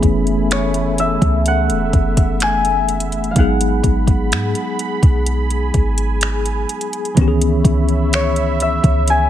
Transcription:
0.00 1.18 F#1 loud
0.00 3.31 E3 medium
0.00 3.32 A3 medium
0.00 3.32 B3 medium
0.00 3.33 C#4 medium
0.00 3.34 G#4 medium
0.00 3.33 E5 medium
0.00 1.44 G#5 medium
0.00 3.33 B5 medium
0.00 kick medium
0.00 closed hi-hat soft
0.27 closed hi-hat soft
0.51 2.43 C#5 medium
0.51 finger snap loud
0.51 closed hi-hat medium
0.74 closed hi-hat soft
0.98 2.72 E5 medium
0.98 closed hi-hat medium
1.22 1.71 C#2 loud
1.22 kick medium
1.22 closed hi-hat soft
1.46 5.23 F#5 medium
1.46 3.08 F#5 medium
1.46 closed hi-hat medium
1.70 1.92 E1 medium
1.70 closed hi-hat medium
1.93 3.32 F#1 loud
1.93 kick medium
1.93 closed hi-hat soft
2.17 kick medium
2.17 closed hi-hat medium
2.40 3.93 G#5 loud
2.40 finger snap loud
2.40 closed hi-hat medium
2.65 closed hi-hat medium
2.89 closed hi-hat medium
3.00 closed hi-hat medium
3.12 closed hi-hat soft
3.24 closed hi-hat soft
3.31 7.12 F#3 medium
3.31 3.44 F5 medium
3.35 3.82 G#1 loud
3.35 7.13 G#3 medium
3.35 7.13 B3 medium
3.35 7.14 D#4 medium
3.35 7.13 G#4 medium
3.35 5.24 F#5 medium
3.35 7.13 B5 medium
3.35 kick loud
3.35 closed hi-hat medium
3.40 7.15 G#4 medium
3.61 closed hi-hat medium
3.84 4.33 G#1 loud
3.84 kick medium
3.84 closed hi-hat soft
4.07 kick medium
4.07 closed hi-hat soft
4.32 4.54 G#2 loud
4.32 finger snap loud
4.32 closed hi-hat medium
4.55 closed hi-hat soft
4.79 closed hi-hat medium
5.03 5.71 B1 loud
5.03 kick medium
5.03 closed hi-hat soft
5.26 7.15 G#5 medium
5.26 closed hi-hat medium
5.50 closed hi-hat soft
5.74 6.66 G#1 loud
5.74 kick medium
5.74 closed hi-hat soft
5.98 closed hi-hat medium
6.21 finger snap loud
6.21 closed hi-hat medium
6.46 closed hi-hat medium
6.69 closed hi-hat medium
6.81 closed hi-hat medium
6.93 closed hi-hat soft
7.05 closed hi-hat soft
7.15 7.63 C#2 loud
7.15 9.30 E3 medium
7.15 9.30 B3 medium
7.15 9.30 C#4 medium
7.15 9.30 C#5 medium
7.15 9.30 E5 medium
7.15 9.30 B5 medium
7.15 kick loud
7.15 closed hi-hat medium
7.20 9.30 D#3 medium
7.20 7.26 G4 medium
7.28 9.30 G#4 medium
7.42 closed hi-hat medium
7.65 8.80 C#2 loud
7.65 kick medium
7.65 closed hi-hat soft
7.89 closed hi-hat soft
8.13 9.30 C#5 medium
8.13 finger snap loud
8.13 closed hi-hat medium
8.36 closed hi-hat soft
8.60 9.30 E5 medium
8.60 closed hi-hat medium
8.84 9.30 C#2 loud
8.84 kick medium
8.84 closed hi-hat soft
9.08 9.30 G#5 loud
9.08 closed hi-hat medium

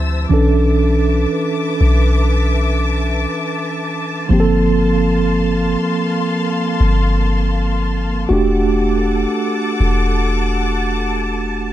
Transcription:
0.00 0.26 D2 loud
0.00 0.26 C5 medium
0.00 0.26 E5 medium
0.00 0.26 A5 medium
0.00 0.27 E6 medium
0.29 1.27 B1 loud
0.29 4.26 E3 medium
0.29 4.27 C#4 medium
0.29 4.27 D4 medium
0.29 4.26 B4 medium
0.29 4.26 E5 medium
0.29 8.26 A5 medium
0.29 4.26 D6 medium
0.34 4.28 A4 medium
1.81 3.27 B1 medium
4.29 5.76 G1 loud
4.29 8.26 F3 medium
4.29 8.26 A#3 medium
4.29 8.27 C4 medium
4.29 8.26 F5 medium
4.29 8.26 C6 medium
4.33 4.38 G4 medium
4.40 8.31 A4 medium
6.81 8.26 G1 loud
8.29 9.26 E1 loud
8.29 11.73 A3 medium
8.29 11.73 D4 medium
8.29 11.73 F#4 medium
8.29 11.73 A4 medium
8.29 11.73 F#5 medium
8.29 11.73 A5 medium
8.29 11.73 D6 medium
8.33 11.73 G4 medium
9.80 11.73 E1 loud

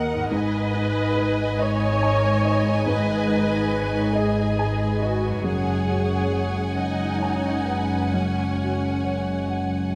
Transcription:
0.00 0.28 D#2 medium
0.00 0.29 D#2 medium
0.00 0.15 D#3 soft
0.00 0.36 D#3 soft
0.00 0.15 A#3 medium
0.00 0.32 A#4 medium
0.00 0.35 A#4 soft
0.00 0.30 D#5 medium
0.00 0.36 D#5 medium
0.00 0.30 F#5 medium
0.00 0.15 A#5 soft
0.15 4.05 G#2 soft
0.19 4.09 B3 soft
0.24 4.14 D#4 soft
0.28 2.83 G#2 medium
0.28 5.40 G#2 medium
0.28 5.40 D#4 medium
0.28 4.18 G#4 soft
0.28 5.40 D#5 medium
0.28 5.40 G#5 medium
0.32 5.41 G#1 medium
0.32 5.41 G#3 medium
0.32 1.61 B4 medium
0.32 1.59 D#5 medium
0.74 1.43 D#4 soft
1.16 1.85 B4 soft
1.59 2.03 B4 medium
1.59 2.88 C#5 medium
1.59 2.28 D#5 soft
2.02 2.45 A#4 medium
2.02 2.71 G#5 soft
2.44 2.88 B4 medium
2.44 3.13 D#5 soft
2.86 5.40 G#2 soft
2.86 4.13 B4 medium
2.86 3.28 D#5 medium
3.29 3.98 D#4 soft
3.29 3.72 D#5 medium
3.71 4.41 B4 soft
3.71 4.16 C#5 medium
4.14 5.01 G#4 medium
4.14 5.45 B4 medium
4.14 4.84 D#5 soft
4.59 5.28 G#5 soft
5.00 5.44 F#4 medium
5.00 5.45 D#5 soft
5.27 9.17 F#2 soft
5.31 9.21 C#4 soft
5.36 9.26 F#4 soft
5.41 8.08 F#2 soft
5.41 9.95 F#2 medium
5.41 9.31 G#4 soft
5.41 6.76 G#4 medium
5.41 9.95 F#5 medium
5.41 9.95 G#5 medium
5.45 9.95 F#1 medium
5.45 9.95 G#3 medium
5.45 9.95 C#4 medium
5.45 6.77 C#5 medium
5.88 6.59 F#4 soft
6.33 7.04 C#5 soft
6.75 8.12 D#4 medium
6.75 7.22 D#5 soft
6.75 7.49 F#5 soft
7.20 7.65 C#5 soft
7.20 7.95 G#5 soft
7.65 8.12 B4 soft
7.65 8.41 F#5 soft
8.12 9.95 F#2 soft
8.12 9.49 C#4 soft
8.12 9.95 C#5 soft
8.60 9.31 F#4 soft
9.04 9.77 C#5 soft
9.48 9.95 F#5 soft

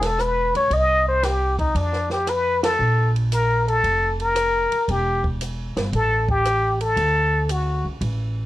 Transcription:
0.00 0.50 E1 medium
0.00 snare soft
0.00 ride medium
0.04 0.22 A4 medium
0.19 0.55 B4 medium
0.19 cross-stick medium
0.19 hi-hat pedal soft
0.55 0.70 C#2 medium
0.55 0.75 C#5 medium
0.55 ride soft
0.70 1.71 C2 medium
0.70 1.08 D#5 medium
0.70 kick soft
0.70 ride medium
1.08 1.26 C5 medium
1.23 1.58 G4 medium
1.23 snare soft
1.23 hi-hat pedal soft
1.23 ride medium
1.59 1.77 D#4 medium
1.59 kick soft
1.59 ride soft
1.75 2.75 F2 medium
1.75 2.11 D4 medium
1.75 kick soft
1.75 ride medium
1.93 snare soft
2.10 2.30 G4 medium
2.10 snare soft
2.27 2.63 B4 medium
2.27 cross-stick medium
2.27 hi-hat pedal soft
2.27 ride medium
2.63 3.12 A4 medium
2.63 snare medium
2.63 ride medium
2.79 3.80 A#1 medium
3.16 ride soft
3.32 3.66 A#4 medium
3.32 hi-hat pedal medium
3.32 ride medium
3.68 4.16 A4 medium
3.68 ride soft
3.84 4.68 F1 medium
3.84 kick soft
3.84 ride medium
4.20 4.92 A#4 medium
4.20 ride soft
4.36 cross-stick medium
4.36 hi-hat pedal medium
4.36 ride medium
4.72 muted upright bass stroke soft
4.72 ride soft
4.88 5.73 E1 medium
4.88 5.25 G4 medium
4.88 kick soft
4.88 ride medium
5.24 kick soft
5.41 hi-hat pedal medium
5.41 ride medium
5.76 5.91 G1 medium
5.76 snare medium
5.76 ride soft
5.92 6.93 A1 medium
5.92 6.28 A4 medium
5.92 kick soft
5.92 ride medium
6.28 6.78 G4 medium
6.28 kick medium
6.45 cross-stick medium
6.45 hi-hat pedal medium
6.45 ride medium
6.81 7.53 A4 medium
6.81 ride soft
6.97 7.81 D2 medium
6.97 kick soft
6.97 ride medium
7.49 7.86 F#4 medium
7.49 hi-hat pedal soft
7.49 ride medium
7.85 8.00 C#2 medium
8.01 8.46 A1 medium
8.01 kick soft
8.01 ride medium

